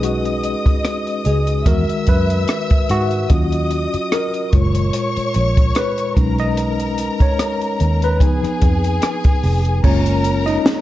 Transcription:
Already playing: fingered electric bass B1, tine electric piano G#3 C#4 D#4 G#4 B4, string section D#5 D#6
0.03 tine electric piano F#4, closed hi-hat
0.25 closed hi-hat
0.44 closed hi-hat
0.66 muted fingered electric bass stroke, kick, closed hi-hat
0.85 cross-stick, closed hi-hat
1.07 closed hi-hat
1.25 fingered electric bass C#2, tine electric piano G#4, closed hi-hat
1.47 closed hi-hat
1.66 fingered electric bass E2, tine electric piano D#3 G#3 F#4 A#4, string section E5 E6, kick, closed hi-hat
1.89 muted fingered electric bass stroke, closed hi-hat
2.07 fingered electric bass F#2, tine electric piano B4, kick, closed hi-hat
2.30 closed hi-hat
2.48 cross-stick, closed hi-hat
2.70 kick, closed hi-hat
2.89 fingered electric bass G#2, tine electric piano F#4, cross-stick, closed hi-hat
3.11 closed hi-hat
3.29 fingered electric bass D#2, tine electric piano F#3 C#4 F4, string section D#5 D#6, kick, closed hi-hat
3.52 closed hi-hat
3.71 closed hi-hat
3.94 muted fingered electric bass stroke, closed hi-hat
4.12 tine electric piano A#4, cross-stick, closed hi-hat
4.34 closed hi-hat
4.53 fingered electric bass F#1, tine electric piano A#2 G#3 F4, string section C#5 C#6, kick, closed hi-hat
4.75 closed hi-hat
4.93 closed hi-hat
5.17 muted fingered electric bass stroke, closed hi-hat
5.34 fingered electric bass A#1, closed hi-hat
5.57 kick, closed hi-hat
5.75 tine electric piano B4, cross-stick, closed hi-hat
5.98 closed hi-hat
6.17 fingered electric bass B1, tine electric piano G#3 C#4 D#4, string section A#4 A#5, kick, cross-stick, closed hi-hat
6.38 tine electric piano D#5, closed hi-hat
6.57 closed hi-hat
6.80 closed hi-hat
6.98 closed hi-hat
7.20 tine electric piano C#5, muted fingered electric bass stroke, kick, closed hi-hat
7.39 cross-stick, closed hi-hat
7.61 closed hi-hat
7.80 fingered electric bass D#2, closed hi-hat
8.02 tine electric piano B4, closed hi-hat
8.20 fingered electric bass C#2, tine electric piano F3 B3 D#4, string section G#4 G#5, kick, closed hi-hat
8.43 muted fingered electric bass stroke, cross-stick, closed hi-hat
8.62 fingered electric bass F2, kick, closed hi-hat
8.84 closed hi-hat
9.02 cross-stick, closed hi-hat
9.24 kick, closed hi-hat
9.43 fingered electric bass F1, open hi-hat
9.65 closed hi-hat
9.83 fingered electric bass F#1, tine electric piano G#3 A#3 C#4 F4 C#5, string section A#4 A#5, kick, crash
10.06 closed hi-hat
10.24 closed hi-hat
10.46 tine electric piano D#4 D#5, closed hi-hat
10.66 snare, closed hi-hat

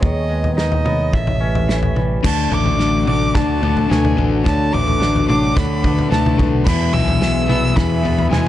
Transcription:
Already playing: analog synth pad G#4
0.01 fingered electric bass D#2, clean electric guitar D#3, analog synth pad D#3 B3 D#5, vibraphone C#5, violin D#5, kick, floor tom
0.29 clean electric guitar G#3, vibraphone B4
0.44 floor tom
0.57 clean electric guitar D#4, violin D#5, snare
0.72 floor tom
0.85 clean electric guitar B3, vibraphone C#5, mid tom
1.12 fingered electric bass A1, clean electric guitar A2, analog synth pad E3 A3 G4 C#5, violin E5, kick
1.27 floor tom, mid tom
1.39 clean electric guitar C#4, vibraphone B4
1.55 floor tom
1.68 clean electric guitar E3, snare
1.83 floor tom
1.95 clean electric guitar G3, vibraphone B4, mid tom
2.23 fingered electric bass D2, overdriven electric guitar D3 A3 D4, analog synth pad D4 F#4 A4 F#5, violin A5, kick, snare, floor tom, crash
2.51 fingered electric bass A1, overdriven electric guitar D3 A3 D4, violin D6, floor tom
2.66 floor tom
2.79 overdriven electric guitar D3 A3 D4, vibraphone D5, snare
3.07 overdriven electric guitar D3 A3 D4, violin D6, mid tom
3.34 fingered electric bass D2, overdriven electric guitar D3 A3 D4, vibraphone D5, violin A5, kick, snare, floor tom
3.62 overdriven electric guitar D3 A3 D4, floor tom
3.77 floor tom
3.89 fingered electric bass D2, overdriven electric guitar D3 A3 D4, vibraphone B4, violin G#5, snare, mid tom
4.05 floor tom, mid tom
4.16 fingered electric bass A1, overdriven electric guitar D3 A3 D4, floor tom
4.44 fingered electric bass D2, overdriven electric guitar D3 A3 D4, vibraphone C#5, violin A5, kick, snare, floor tom
4.72 fingered electric bass A1, overdriven electric guitar D3 A3 D4, vibraphone B4, violin D6, floor tom
4.88 floor tom
5.00 overdriven electric guitar D3 A3 D4, snare
5.16 floor tom
5.28 overdriven electric guitar D3 A3 D4, vibraphone C#5, violin D6, mid tom
5.55 fingered electric bass D2, overdriven electric guitar D3 A3 D4, violin B5, kick, snare, floor tom
5.83 overdriven electric guitar D3 A3 D4, vibraphone B4, kick, floor tom
5.99 floor tom
6.10 fingered electric bass D2, overdriven electric guitar D3 A3 D4, violin A5, snare, mid tom
6.26 floor tom, mid tom
6.37 fingered electric bass B1, overdriven electric guitar D3 A3 D4, vibraphone B4, kick, floor tom, mid tom
6.65 overdriven electric guitar E2 B2 E3, fingered electric bass E2, analog synth pad E4 G#4 B4 E5, vibraphone E5, violin B5, kick, snare, floor tom, crash
6.93 fingered electric bass B1, overdriven electric guitar E2 B2 E3, clean electric guitar G#3, violin E6, floor tom
7.08 floor tom
7.20 overdriven electric guitar E2 B2 E3, vibraphone E5, snare
7.47 overdriven electric guitar E2 B2 E3, clean electric guitar B3, violin E6, mid tom
7.75 overdriven electric guitar E2 B2 E3, fingered electric bass E2, vibraphone E5, violin B5, kick, snare, floor tom
8.03 overdriven electric guitar E2 B2 E3, clean electric guitar B3, floor tom
8.19 floor tom
8.30 overdriven electric guitar E2 B2 E3, fingered electric bass E2, clean electric guitar G#3, vibraphone B4, violin G#5, snare, mid tom

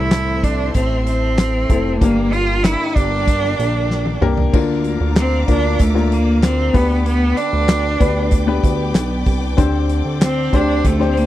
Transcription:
Already playing: analog synth bass C2, upright piano A2 E3 A3 C4 E4 A4, cello E4, string section A4 C5 E5 C6
0.11 snare, clap, closed hi-hat
0.43 cello D4, kick, closed hi-hat
0.74 analog synth bass A1, cello C4, kick, closed hi-hat
1.06 cello C4, closed hi-hat
1.38 snare, clap, closed hi-hat
1.70 analog synth bass F1, upright piano A3 C4 E4 A4, kick, closed hi-hat
2.00 analog synth bass G1, upright piano G2 D3 A#3 D4 G4 A#4, cello A#3, string section A#4 D5 G5 D6, kick, closed hi-hat
2.32 cello F4, closed hi-hat
2.63 cello E4, snare, clap, closed hi-hat
2.95 analog synth bass G1, cello D4, kick, closed hi-hat
3.27 kick, closed hi-hat
3.44 snare
3.59 analog synth bass A#1, closed hi-hat
3.90 snare
4.06 high tom
4.21 analog synth bass C2, upright piano A#3 D4 G4 A#4, mid tom
4.37 floor tom
4.53 analog synth bass D2, upright piano D3 A#3 D4 F4 A#4, string section D5 F5 A#5 D6, kick, crash
4.84 closed hi-hat
5.00 analog synth bass D2
5.16 cello C4, snare, clap, closed hi-hat
5.48 analog synth bass D2, upright piano A#3 D4 F4 A#4, cello D4, kick, closed hi-hat
5.79 analog synth bass D2, cello A3, kick, closed hi-hat
5.94 upright piano A#3 D4 F4 A#4, snare
6.12 cello A#3, closed hi-hat
6.43 cello C4, snare, clap, closed hi-hat
6.72 analog synth bass D2, upright piano D3 B3 D4 G4 B4, cello B3, string section B4 D5 G5 D6, kick, open hi-hat
7.05 cello B3, closed hi-hat
7.37 cello D4, closed hi-hat
7.53 analog synth bass D2
7.69 snare, clap, closed hi-hat
8.00 analog synth bass D2, upright piano B3 D4 G4 B4, kick, closed hi-hat
8.31 kick, closed hi-hat
8.47 upright piano B3 D4 G4 B4
8.63 analog synth bass D2, kick, closed hi-hat
8.94 analog synth bass B1, snare, clap, closed hi-hat
9.26 analog synth bass C2, kick, open hi-hat
9.57 analog synth bass D2, upright piano D3 C4 D4 G4 C5, string section C5, kick, closed hi-hat
9.89 closed hi-hat
10.05 analog synth bass D2
10.22 cello C4, snare, clap, closed hi-hat
10.52 analog synth bass D2, upright piano C4 D4 G4 C5, cello D4, kick, closed hi-hat
10.84 analog synth bass D2, cello A3, kick, closed hi-hat
11.00 upright piano C4 D4 G4 C5, snare
11.10 cello C4
11.17 cello A#3, closed hi-hat

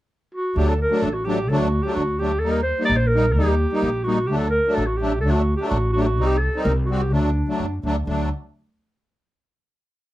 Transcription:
0.34 clarinet F#4
0.56 upright bass D2, accordion F#3 A3 D4, clarinet G4
0.69 clarinet A4
0.82 clarinet A#4
0.90 accordion F#3 A3 D4
1.02 upright bass A1, clarinet A4
1.13 clarinet F#4
1.25 accordion F#3 A3 D4, clarinet G4
1.49 upright bass D2, accordion F#3 A3 D4, clarinet A4
1.58 clarinet F#4
1.82 accordion F#3 A3 D4, clarinet G4
1.95 upright bass D2, clarinet F#4
2.19 accordion F#3 A3 D4, clarinet G4
2.39 upright bass D#2, clarinet A4
2.44 accordion G3 A#3 D#4
2.51 clarinet A#4
2.63 clarinet C5
2.79 accordion G3 A#3 D#4
2.85 clarinet D5
2.89 upright bass A#1
2.96 clarinet C5
3.07 clarinet A#4
3.14 accordion G3 A#3 D#4
3.32 upright bass D#2, clarinet G4
3.37 accordion G3 A#3 D#4
3.72 accordion G3 A#3 D#4
3.82 upright bass A#1
4.04 accordion G3 A#3 D#4, clarinet F#4
4.27 upright bass D2, accordion F#3 A3, clarinet G4
4.31 accordion D4
4.38 clarinet A4
4.50 clarinet A#4
4.67 accordion F#3 A3 D4
4.74 upright bass A1, clarinet A4
4.86 clarinet F#4
4.96 clarinet G4
5.01 accordion F#3 A3 D4
5.21 upright bass D2, accordion F#3, clarinet A4
5.25 accordion A3 D4
5.30 clarinet F#4
5.56 clarinet G4
5.60 accordion F#3 A3 D4
5.68 upright bass A1, clarinet F#4
5.93 accordion F#3 A3 D4, clarinet F#4
6.01 clarinet G4
6.06 clarinet F#4
6.18 upright bass C2, accordion G3 C4 D#4
6.26 clarinet G4
6.38 clarinet A4
6.55 accordion G3 C4 D#4
6.63 upright bass C2, clarinet A#4
6.86 accordion G3, clarinet F#4
6.91 accordion C4 F#4, clarinet G4
6.99 clarinet G4
7.12 upright bass D2, accordion F#3 A3 D4, clarinet D4
7.48 accordion F#3 A3 D4
7.60 upright bass F#2
7.83 upright bass D2, accordion F#3 A3 D4
8.06 upright bass D2, accordion F#3 A3 D4, clarinet D4

